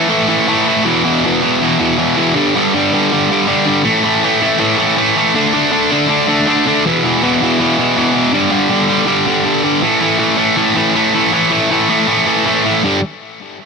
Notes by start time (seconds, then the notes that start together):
0.09 A2 E3 A3
0.28 A2 E3 A3
0.48 A2 E3 A3
0.67 A2 E3 A3
0.84 E2 B2 E3
1.05 E2 B2 E3
1.25 E2 B2 E3
1.42 E2 B2 E3
1.61 E2 B2 E3
1.79 E2 B2 E3
1.98 E2 B2 E3
2.17 E2 B2 E3
2.35 G2 D3 G3
2.56 G2 D3 G3
2.74 G2 D3 G3
2.93 G2 D3 G3
3.13 G2 D3 G3
3.31 G2 D3 G3
3.47 G2 D3 G3
3.66 G2 D3 G3
3.84 A2 E3 A3
4.04 A2 E3 A3
4.23 A2 E3 A3
4.41 A2 E3 A3
4.59 A2 E3 A3
4.78 A2 E3 A3
4.97 A2 E3 A3
5.17 A2 E3 A3
5.36 D3 A3 D4
5.54 D3 A3 D4
5.71 D3 A3 D4
5.91 D3 A3 D4
6.07 D3 A3 D4
6.27 D3 A3 D4
6.46 D3 A3 D4
6.66 D3 A3 D4
6.86 E2 B2 E3
7.04 E2 B2 E3
7.23 E2 B2 E3
7.42 E2 B2 E3
7.60 E2 B2 E3
7.78 E2 B2 E3
7.97 E2 B2 E3
8.15 E2 B2 E3
8.33 G2 D3 G3
8.51 G2 D3 G3
8.69 G2 D3 G3
8.88 G2 D3 G3
9.06 G2 D3 G3
9.27 G2 D3 G3
9.45 G2 D3 G3
9.64 G2 D3 G3
9.83 A2 E3 A3
10.01 A2 E3 A3
10.19 A2 E3 A3
10.37 A2 E3 A3
10.57 A2 E3 A3
10.75 A2 E3 A3
10.95 A2 E3 A3
11.14 A2 E3 A3
11.32 A2 E3 A3
11.50 A2 E3 A3
11.70 A2 E3 A3
11.89 A2 E3 A3
12.08 A2 E3 A3
12.26 A2 E3 A3
12.46 A2 E3 A3
12.64 A2 E3 A3
12.83 G2 D3 G3